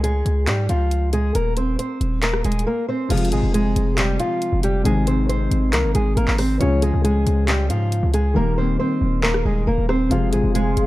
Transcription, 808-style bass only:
0, 0, Header, 1, 2, 480
1, 0, Start_track
1, 0, Key_signature, -4, "minor"
1, 0, Tempo, 437956
1, 1480, Time_signature, 4, 2, 24, 8
1, 11908, End_track
2, 0, Start_track
2, 0, Title_t, "808-style bass"
2, 0, Program_c, 0, 38
2, 0, Note_on_c, 0, 37, 111
2, 251, Note_off_c, 0, 37, 0
2, 279, Note_on_c, 0, 37, 103
2, 519, Note_on_c, 0, 44, 104
2, 535, Note_off_c, 0, 37, 0
2, 747, Note_off_c, 0, 44, 0
2, 759, Note_on_c, 0, 37, 105
2, 1451, Note_off_c, 0, 37, 0
2, 1479, Note_on_c, 0, 27, 112
2, 1940, Note_off_c, 0, 27, 0
2, 2200, Note_on_c, 0, 27, 100
2, 2661, Note_off_c, 0, 27, 0
2, 2680, Note_on_c, 0, 27, 105
2, 2910, Note_off_c, 0, 27, 0
2, 3400, Note_on_c, 0, 29, 110
2, 3640, Note_on_c, 0, 32, 101
2, 3657, Note_off_c, 0, 29, 0
2, 3754, Note_off_c, 0, 32, 0
2, 3760, Note_on_c, 0, 29, 100
2, 4106, Note_off_c, 0, 29, 0
2, 4120, Note_on_c, 0, 29, 105
2, 4581, Note_off_c, 0, 29, 0
2, 4960, Note_on_c, 0, 29, 104
2, 5305, Note_off_c, 0, 29, 0
2, 5319, Note_on_c, 0, 32, 115
2, 6011, Note_off_c, 0, 32, 0
2, 6040, Note_on_c, 0, 32, 105
2, 6280, Note_on_c, 0, 36, 101
2, 6296, Note_off_c, 0, 32, 0
2, 6400, Note_on_c, 0, 32, 98
2, 6417, Note_off_c, 0, 36, 0
2, 6514, Note_off_c, 0, 32, 0
2, 6519, Note_on_c, 0, 32, 106
2, 6750, Note_off_c, 0, 32, 0
2, 6759, Note_on_c, 0, 32, 110
2, 6875, Note_off_c, 0, 32, 0
2, 6880, Note_on_c, 0, 32, 98
2, 7225, Note_off_c, 0, 32, 0
2, 7239, Note_on_c, 0, 37, 114
2, 7585, Note_off_c, 0, 37, 0
2, 7600, Note_on_c, 0, 37, 100
2, 7945, Note_off_c, 0, 37, 0
2, 7960, Note_on_c, 0, 37, 105
2, 8440, Note_on_c, 0, 44, 98
2, 8456, Note_off_c, 0, 37, 0
2, 8782, Note_off_c, 0, 44, 0
2, 8800, Note_on_c, 0, 37, 106
2, 9145, Note_off_c, 0, 37, 0
2, 9160, Note_on_c, 0, 27, 113
2, 9621, Note_off_c, 0, 27, 0
2, 9880, Note_on_c, 0, 27, 105
2, 10341, Note_off_c, 0, 27, 0
2, 10360, Note_on_c, 0, 27, 106
2, 10590, Note_off_c, 0, 27, 0
2, 10600, Note_on_c, 0, 27, 105
2, 10715, Note_off_c, 0, 27, 0
2, 10720, Note_on_c, 0, 27, 99
2, 11065, Note_off_c, 0, 27, 0
2, 11080, Note_on_c, 0, 29, 111
2, 11320, Note_on_c, 0, 32, 100
2, 11336, Note_off_c, 0, 29, 0
2, 11434, Note_off_c, 0, 32, 0
2, 11440, Note_on_c, 0, 29, 102
2, 11785, Note_off_c, 0, 29, 0
2, 11800, Note_on_c, 0, 29, 100
2, 11908, Note_off_c, 0, 29, 0
2, 11908, End_track
0, 0, End_of_file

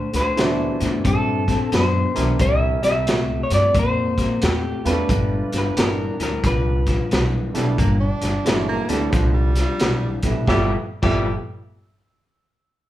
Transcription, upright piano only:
0, 0, Header, 1, 2, 480
1, 0, Start_track
1, 0, Tempo, 673401
1, 1707, Time_signature, 4, 2, 24, 8
1, 9192, End_track
2, 0, Start_track
2, 0, Title_t, "Upright piano"
2, 0, Program_c, 0, 0
2, 259, Note_on_c, 0, 52, 66
2, 262, Note_on_c, 0, 54, 61
2, 263, Note_on_c, 0, 64, 59
2, 264, Note_on_c, 0, 57, 59
2, 270, Note_on_c, 0, 62, 73
2, 989, Note_off_c, 0, 52, 0
2, 991, Note_off_c, 0, 54, 0
2, 991, Note_off_c, 0, 64, 0
2, 992, Note_off_c, 0, 57, 0
2, 995, Note_off_c, 0, 62, 0
2, 1530, Note_on_c, 0, 52, 65
2, 1534, Note_on_c, 0, 55, 58
2, 1536, Note_on_c, 0, 62, 61
2, 1536, Note_on_c, 0, 70, 64
2, 1541, Note_on_c, 0, 64, 71
2, 2150, Note_off_c, 0, 52, 0
2, 2152, Note_off_c, 0, 55, 0
2, 2153, Note_off_c, 0, 62, 0
2, 2154, Note_off_c, 0, 70, 0
2, 2156, Note_off_c, 0, 64, 0
2, 3457, Note_on_c, 0, 55, 60
2, 3457, Note_on_c, 0, 65, 69
2, 3464, Note_on_c, 0, 57, 64
2, 3465, Note_on_c, 0, 59, 63
2, 3467, Note_on_c, 0, 62, 75
2, 4074, Note_off_c, 0, 55, 0
2, 4074, Note_off_c, 0, 65, 0
2, 4078, Note_off_c, 0, 57, 0
2, 4078, Note_off_c, 0, 59, 0
2, 4079, Note_off_c, 0, 62, 0
2, 4110, Note_on_c, 0, 55, 60
2, 4115, Note_on_c, 0, 59, 60
2, 4116, Note_on_c, 0, 62, 70
2, 4835, Note_off_c, 0, 55, 0
2, 4837, Note_off_c, 0, 59, 0
2, 4838, Note_off_c, 0, 62, 0
2, 5374, Note_on_c, 0, 55, 59
2, 5375, Note_on_c, 0, 57, 59
2, 5379, Note_on_c, 0, 59, 62
2, 5380, Note_on_c, 0, 62, 73
2, 5530, Note_off_c, 0, 55, 0
2, 5531, Note_off_c, 0, 57, 0
2, 5533, Note_off_c, 0, 59, 0
2, 5533, Note_off_c, 0, 62, 0
2, 6023, Note_on_c, 0, 52, 61
2, 6024, Note_on_c, 0, 54, 60
2, 6027, Note_on_c, 0, 56, 58
2, 6029, Note_on_c, 0, 57, 63
2, 6031, Note_on_c, 0, 61, 71
2, 6303, Note_off_c, 0, 52, 0
2, 6303, Note_off_c, 0, 54, 0
2, 6305, Note_off_c, 0, 56, 0
2, 6306, Note_off_c, 0, 57, 0
2, 6306, Note_off_c, 0, 61, 0
2, 6336, Note_on_c, 0, 55, 62
2, 6337, Note_on_c, 0, 57, 62
2, 6338, Note_on_c, 0, 59, 60
2, 6342, Note_on_c, 0, 62, 72
2, 6754, Note_off_c, 0, 55, 0
2, 6755, Note_off_c, 0, 57, 0
2, 6756, Note_off_c, 0, 59, 0
2, 6758, Note_off_c, 0, 62, 0
2, 7298, Note_on_c, 0, 55, 51
2, 7304, Note_on_c, 0, 57, 51
2, 7304, Note_on_c, 0, 59, 53
2, 7308, Note_on_c, 0, 64, 61
2, 7452, Note_off_c, 0, 55, 0
2, 7456, Note_off_c, 0, 57, 0
2, 7456, Note_off_c, 0, 59, 0
2, 7457, Note_off_c, 0, 64, 0
2, 7471, Note_on_c, 0, 53, 66
2, 7471, Note_on_c, 0, 57, 59
2, 7473, Note_on_c, 0, 55, 60
2, 7478, Note_on_c, 0, 59, 61
2, 7479, Note_on_c, 0, 64, 71
2, 7654, Note_off_c, 0, 53, 0
2, 7655, Note_off_c, 0, 57, 0
2, 7656, Note_off_c, 0, 55, 0
2, 7658, Note_off_c, 0, 59, 0
2, 7658, Note_off_c, 0, 64, 0
2, 7865, Note_on_c, 0, 53, 69
2, 7866, Note_on_c, 0, 55, 65
2, 7870, Note_on_c, 0, 57, 60
2, 7872, Note_on_c, 0, 59, 60
2, 7872, Note_on_c, 0, 64, 70
2, 8073, Note_off_c, 0, 53, 0
2, 8074, Note_off_c, 0, 55, 0
2, 8075, Note_off_c, 0, 57, 0
2, 8077, Note_off_c, 0, 59, 0
2, 8077, Note_off_c, 0, 64, 0
2, 9192, End_track
0, 0, End_of_file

